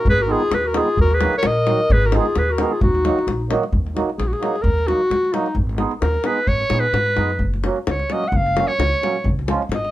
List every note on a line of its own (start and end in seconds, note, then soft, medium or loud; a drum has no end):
0.05 0.33 G#1 medium
0.05 davul low loud
0.09 0.23 G#4 loud
0.09 0.24 B4 loud
0.18 0.34 F#4 medium
0.18 0.33 A#4 medium
0.18 davul high soft
0.26 0.42 D#3 medium
0.26 0.42 G#3 medium
0.26 0.42 B3 medium
0.26 0.42 D#4 medium
0.26 0.42 G#4 medium
0.32 0.55 F4 medium
0.32 0.56 G#4 loud
0.40 davul high soft
0.51 0.79 D#2 medium
0.51 0.67 G#4 medium
0.51 0.69 B4 medium
0.51 davul high medium
0.65 0.79 F#4 medium
0.65 0.79 A#4 medium
0.73 0.88 D#3 medium
0.73 0.88 G#3 medium
0.73 0.89 B3 medium
0.73 0.89 D#4 medium
0.73 0.99 F4 medium
0.73 0.89 G#4 medium
0.73 davul high medium
0.78 0.99 G#4 medium
0.97 1.25 D#2 medium
0.97 1.15 F#4 loud
0.97 1.16 A#4 loud
0.97 davul low medium
1.11 1.34 G#4 medium
1.11 1.35 B4 medium
1.11 davul high soft
1.20 1.34 D#3 medium
1.20 1.34 F#3 medium
1.20 1.35 A#3 medium
1.20 1.35 D#4 medium
1.20 1.35 F#4 medium
1.20 davul high medium
1.33 1.49 A#4 medium
1.33 davul high soft
1.38 1.48 C#5 medium
1.43 1.71 A#1 medium
1.43 1.94 D#5 loud
1.43 davul high medium
1.49 1.94 A#4 medium
1.66 1.80 D#3 medium
1.66 1.80 F#3 medium
1.66 1.81 A#3 medium
1.66 1.81 D#4 medium
1.66 1.81 F#4 medium
1.66 davul high medium
1.90 2.17 G#1 loud
1.90 2.07 G#4 medium
1.90 2.07 B4 loud
1.90 davul low medium
2.02 2.16 F#4 medium
2.02 2.18 A#4 medium
2.02 davul high soft
2.11 2.26 D#3 medium
2.11 2.26 G#3 medium
2.11 2.26 B3 medium
2.11 2.27 D#4 medium
2.11 2.39 F4 medium
2.11 2.27 G#4 medium
2.11 davul high medium
2.16 2.40 G#4 medium
2.26 davul high soft
2.36 2.63 D#2 medium
2.36 2.51 G#4 medium
2.36 2.53 B4 loud
2.36 davul high medium
2.50 2.74 F#4 medium
2.50 2.74 A#4 medium
2.58 2.72 D#3 medium
2.58 2.72 G#3 medium
2.58 2.72 B3 medium
2.58 2.73 D#4 medium
2.58 2.73 G#4 medium
2.58 davul high medium
2.72 2.81 F4 medium
2.72 2.82 G#4 medium
2.81 3.09 D#2 loud
2.81 3.46 D#4 medium
2.81 3.46 F#4 medium
2.81 davul low medium
2.95 davul high soft
3.04 3.18 D#3 medium
3.04 3.18 F#3 medium
3.04 3.18 A#3 medium
3.04 3.19 D#4 medium
3.04 3.19 F#4 medium
3.04 davul high medium
3.19 davul high soft
3.27 3.54 A#1 medium
3.27 davul high medium
3.49 3.63 D#3 medium
3.49 3.63 F#3 medium
3.49 3.64 A#3 medium
3.49 3.64 D#4 medium
3.49 3.65 F#4 medium
3.49 davul high medium
3.63 davul high soft
3.72 4.00 D#2 medium
3.72 davul low medium
3.87 davul high soft
3.95 4.09 F#3 medium
3.95 4.10 A#3 medium
3.95 4.10 D#4 medium
3.95 4.10 F#4 medium
3.95 davul high medium
4.10 davul high soft
4.18 4.32 A#1 medium
4.18 4.29 G#4 medium
4.18 davul high medium
4.27 4.34 F#4 medium
4.33 4.63 G#4 medium
4.33 davul high soft
4.40 4.55 F#3 medium
4.40 4.55 A#3 medium
4.40 4.56 D#4 medium
4.40 4.56 F#4 medium
4.40 davul high medium
4.56 davul high soft
4.62 4.91 D#2 loud
4.62 4.89 A#4 loud
4.62 davul low medium
4.79 davul high soft
4.86 5.01 F#3 medium
4.86 5.01 A#3 medium
4.86 5.01 D#4 soft
4.86 5.35 F#4 medium
4.86 5.02 F#4 medium
4.86 davul high medium
5.01 davul high soft
5.10 5.24 D#2 medium
5.10 davul high medium
5.25 davul high soft
5.32 5.47 F#3 medium
5.32 5.47 A#3 soft
5.32 5.48 D#4 medium
5.32 5.57 D#4 medium
5.32 5.48 F#4 medium
5.32 davul high medium
5.46 davul high soft
5.55 5.83 G#1 loud
5.55 davul low medium
5.69 davul high soft
5.77 5.93 G#3 medium
5.77 5.93 B3 medium
5.77 5.93 D#4 medium
5.77 5.94 G#4 medium
5.77 davul high medium
5.91 davul high soft
6.01 6.16 D#2 medium
6.01 6.28 A#4 medium
6.01 davul high medium
6.14 davul high soft
6.23 6.39 G#3 medium
6.23 6.39 B3 medium
6.23 6.40 D#4 medium
6.23 6.40 G#4 medium
6.23 6.50 B4 medium
6.23 davul high medium
6.37 davul high soft
6.47 6.61 G#1 loud
6.47 6.81 C#5 loud
6.47 davul low medium
6.60 davul high soft
6.70 6.92 A#2 medium
6.70 6.85 G#3 medium
6.70 6.85 B3 soft
6.70 6.86 D#4 soft
6.70 6.86 G#4 medium
6.70 davul high medium
6.80 7.49 B4 loud
6.93 7.14 G#2 medium
6.93 davul high medium
7.06 davul high soft
7.15 7.38 F#2 medium
7.15 7.30 G#3 medium
7.15 7.31 B3 soft
7.15 7.31 D#4 soft
7.15 7.31 G#4 medium
7.15 davul high medium
7.30 davul high soft
7.39 7.67 F#1 medium
7.39 davul low medium
7.54 davul high soft
7.63 7.78 F#3 medium
7.63 7.78 A#3 medium
7.63 7.78 C#4 medium
7.63 7.79 F#4 medium
7.63 davul high medium
7.76 davul high soft
7.87 8.01 C#2 medium
7.87 8.14 C#5 medium
7.87 davul high medium
7.99 davul high soft
8.10 8.24 F#3 medium
8.10 8.25 A#3 medium
8.10 8.25 C#4 medium
8.10 8.25 F#4 medium
8.10 8.29 D#5 medium
8.10 davul high medium
8.24 davul high soft
8.28 8.38 F#5 medium
8.32 8.60 F#1 loud
8.32 davul low medium
8.36 8.69 F5 loud
8.46 davul high soft
8.57 8.71 F#3 medium
8.57 8.71 A#3 soft
8.57 8.71 C#4 medium
8.57 8.72 F#4 medium
8.57 davul high medium
8.67 9.35 C#5 loud
8.67 davul high soft
8.78 8.92 C#2 medium
8.78 davul high medium
8.94 davul high soft
9.01 9.16 F#3 medium
9.01 9.16 A#3 medium
9.01 9.17 C#4 medium
9.01 9.17 F#4 medium
9.01 davul high medium
9.16 davul high soft
9.24 9.52 C#2 medium
9.24 davul low medium
9.39 davul high soft
9.47 9.62 F3 medium
9.47 9.62 G#3 medium
9.47 9.63 C#4 medium
9.47 9.63 F4 medium
9.47 davul high medium
9.62 davul high soft
9.69 9.84 G#1 medium
9.69 davul high medium
9.74 9.91 D#5 medium
9.85 davul high soft